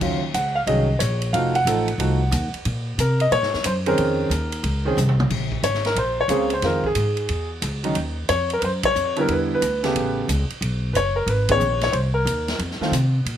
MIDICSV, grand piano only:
0, 0, Header, 1, 2, 480
1, 0, Start_track
1, 0, Key_signature, -5, "minor"
1, 0, Tempo, 331309
1, 20, Time_signature, 4, 2, 24, 8
1, 19373, End_track
2, 0, Start_track
2, 0, Title_t, "Grand piano"
2, 0, Program_c, 0, 0
2, 17, Note_on_c, 0, 51, 47
2, 27, Note_on_c, 0, 54, 50
2, 27, Note_on_c, 0, 61, 48
2, 38, Note_on_c, 0, 65, 54
2, 296, Note_off_c, 0, 51, 0
2, 301, Note_off_c, 0, 54, 0
2, 301, Note_off_c, 0, 61, 0
2, 307, Note_off_c, 0, 65, 0
2, 498, Note_on_c, 0, 78, 91
2, 785, Note_off_c, 0, 78, 0
2, 802, Note_on_c, 0, 77, 90
2, 874, Note_off_c, 0, 77, 0
2, 972, Note_on_c, 0, 51, 57
2, 972, Note_on_c, 0, 75, 88
2, 979, Note_on_c, 0, 54, 55
2, 980, Note_on_c, 0, 61, 58
2, 988, Note_on_c, 0, 68, 66
2, 1251, Note_off_c, 0, 51, 0
2, 1255, Note_off_c, 0, 54, 0
2, 1256, Note_off_c, 0, 61, 0
2, 1259, Note_off_c, 0, 68, 0
2, 1418, Note_off_c, 0, 75, 0
2, 1436, Note_on_c, 0, 73, 70
2, 1926, Note_on_c, 0, 77, 89
2, 1928, Note_on_c, 0, 53, 63
2, 1936, Note_on_c, 0, 63, 50
2, 1937, Note_off_c, 0, 73, 0
2, 1938, Note_on_c, 0, 57, 55
2, 1946, Note_on_c, 0, 66, 63
2, 2208, Note_off_c, 0, 53, 0
2, 2212, Note_off_c, 0, 57, 0
2, 2212, Note_off_c, 0, 63, 0
2, 2216, Note_off_c, 0, 77, 0
2, 2217, Note_off_c, 0, 66, 0
2, 2255, Note_on_c, 0, 78, 105
2, 2415, Note_on_c, 0, 53, 63
2, 2416, Note_on_c, 0, 57, 57
2, 2428, Note_on_c, 0, 63, 54
2, 2428, Note_on_c, 0, 69, 63
2, 2690, Note_off_c, 0, 53, 0
2, 2691, Note_off_c, 0, 57, 0
2, 2697, Note_off_c, 0, 63, 0
2, 2697, Note_off_c, 0, 69, 0
2, 2881, Note_on_c, 0, 53, 47
2, 2888, Note_on_c, 0, 57, 48
2, 2888, Note_on_c, 0, 63, 47
2, 2896, Note_on_c, 0, 66, 63
2, 3162, Note_off_c, 0, 53, 0
2, 3166, Note_off_c, 0, 57, 0
2, 3166, Note_off_c, 0, 63, 0
2, 3170, Note_off_c, 0, 66, 0
2, 3625, Note_off_c, 0, 78, 0
2, 4348, Note_on_c, 0, 70, 87
2, 4655, Note_off_c, 0, 70, 0
2, 4656, Note_on_c, 0, 75, 96
2, 4812, Note_on_c, 0, 73, 101
2, 4819, Note_off_c, 0, 75, 0
2, 5300, Note_on_c, 0, 72, 85
2, 5301, Note_off_c, 0, 73, 0
2, 5372, Note_off_c, 0, 72, 0
2, 5597, Note_on_c, 0, 51, 74
2, 5601, Note_on_c, 0, 60, 75
2, 5602, Note_on_c, 0, 61, 71
2, 5606, Note_on_c, 0, 68, 80
2, 5621, Note_on_c, 0, 70, 88
2, 6211, Note_off_c, 0, 51, 0
2, 6213, Note_off_c, 0, 60, 0
2, 6213, Note_off_c, 0, 61, 0
2, 6215, Note_off_c, 0, 68, 0
2, 7030, Note_on_c, 0, 51, 73
2, 7039, Note_on_c, 0, 60, 61
2, 7043, Note_on_c, 0, 61, 62
2, 7056, Note_on_c, 0, 68, 81
2, 7159, Note_off_c, 0, 70, 0
2, 7184, Note_off_c, 0, 51, 0
2, 7189, Note_off_c, 0, 60, 0
2, 7191, Note_off_c, 0, 61, 0
2, 7197, Note_off_c, 0, 68, 0
2, 8170, Note_on_c, 0, 73, 89
2, 8487, Note_off_c, 0, 73, 0
2, 8495, Note_on_c, 0, 70, 90
2, 8644, Note_off_c, 0, 70, 0
2, 8662, Note_on_c, 0, 72, 88
2, 8943, Note_off_c, 0, 72, 0
2, 8992, Note_on_c, 0, 73, 94
2, 9115, Note_on_c, 0, 49, 66
2, 9127, Note_on_c, 0, 58, 60
2, 9127, Note_on_c, 0, 60, 67
2, 9140, Note_on_c, 0, 68, 81
2, 9400, Note_off_c, 0, 49, 0
2, 9406, Note_off_c, 0, 58, 0
2, 9406, Note_off_c, 0, 60, 0
2, 9413, Note_off_c, 0, 68, 0
2, 9467, Note_on_c, 0, 72, 89
2, 9469, Note_off_c, 0, 73, 0
2, 9606, Note_on_c, 0, 51, 53
2, 9611, Note_on_c, 0, 56, 45
2, 9611, Note_on_c, 0, 60, 53
2, 9622, Note_on_c, 0, 65, 64
2, 9627, Note_off_c, 0, 72, 0
2, 9637, Note_on_c, 0, 70, 81
2, 9886, Note_off_c, 0, 51, 0
2, 9889, Note_off_c, 0, 56, 0
2, 9889, Note_off_c, 0, 60, 0
2, 9894, Note_off_c, 0, 65, 0
2, 9912, Note_off_c, 0, 70, 0
2, 9945, Note_on_c, 0, 68, 86
2, 10836, Note_off_c, 0, 68, 0
2, 11352, Note_on_c, 0, 51, 68
2, 11359, Note_on_c, 0, 54, 60
2, 11364, Note_on_c, 0, 61, 59
2, 11370, Note_on_c, 0, 63, 77
2, 11510, Note_off_c, 0, 51, 0
2, 11514, Note_off_c, 0, 54, 0
2, 11516, Note_off_c, 0, 61, 0
2, 11519, Note_off_c, 0, 63, 0
2, 12011, Note_on_c, 0, 73, 99
2, 12301, Note_off_c, 0, 73, 0
2, 12363, Note_on_c, 0, 70, 91
2, 12445, Note_on_c, 0, 71, 68
2, 12464, Note_off_c, 0, 70, 0
2, 12491, Note_off_c, 0, 71, 0
2, 12524, Note_on_c, 0, 72, 85
2, 12597, Note_off_c, 0, 72, 0
2, 12828, Note_on_c, 0, 73, 114
2, 13279, Note_on_c, 0, 50, 66
2, 13293, Note_on_c, 0, 55, 63
2, 13296, Note_on_c, 0, 59, 63
2, 13300, Note_on_c, 0, 64, 74
2, 13312, Note_off_c, 0, 73, 0
2, 13341, Note_on_c, 0, 70, 88
2, 13474, Note_off_c, 0, 70, 0
2, 13513, Note_on_c, 0, 71, 82
2, 13586, Note_off_c, 0, 71, 0
2, 13831, Note_on_c, 0, 71, 95
2, 13899, Note_off_c, 0, 50, 0
2, 13906, Note_off_c, 0, 55, 0
2, 13908, Note_off_c, 0, 59, 0
2, 13910, Note_off_c, 0, 64, 0
2, 14241, Note_on_c, 0, 49, 65
2, 14248, Note_on_c, 0, 57, 59
2, 14258, Note_on_c, 0, 59, 58
2, 14265, Note_on_c, 0, 67, 73
2, 14702, Note_off_c, 0, 71, 0
2, 14861, Note_off_c, 0, 49, 0
2, 14865, Note_off_c, 0, 57, 0
2, 14869, Note_off_c, 0, 59, 0
2, 14873, Note_off_c, 0, 67, 0
2, 15839, Note_on_c, 0, 71, 75
2, 15870, Note_off_c, 0, 71, 0
2, 15886, Note_on_c, 0, 73, 95
2, 16162, Note_off_c, 0, 73, 0
2, 16169, Note_on_c, 0, 70, 86
2, 16344, Note_off_c, 0, 70, 0
2, 16360, Note_on_c, 0, 71, 81
2, 16639, Note_off_c, 0, 71, 0
2, 16650, Note_on_c, 0, 59, 57
2, 16656, Note_on_c, 0, 51, 56
2, 16661, Note_on_c, 0, 68, 58
2, 16665, Note_on_c, 0, 61, 59
2, 16684, Note_on_c, 0, 73, 113
2, 16802, Note_off_c, 0, 59, 0
2, 16805, Note_off_c, 0, 51, 0
2, 16808, Note_off_c, 0, 68, 0
2, 16810, Note_off_c, 0, 61, 0
2, 17128, Note_off_c, 0, 73, 0
2, 17150, Note_on_c, 0, 73, 98
2, 17273, Note_on_c, 0, 72, 80
2, 17298, Note_off_c, 0, 73, 0
2, 17346, Note_off_c, 0, 72, 0
2, 17588, Note_on_c, 0, 70, 87
2, 18201, Note_off_c, 0, 70, 0
2, 18560, Note_on_c, 0, 51, 67
2, 18565, Note_on_c, 0, 57, 61
2, 18567, Note_on_c, 0, 60, 55
2, 18581, Note_on_c, 0, 65, 70
2, 18716, Note_off_c, 0, 51, 0
2, 18718, Note_off_c, 0, 57, 0
2, 18719, Note_off_c, 0, 60, 0
2, 18727, Note_off_c, 0, 65, 0
2, 19373, End_track
0, 0, End_of_file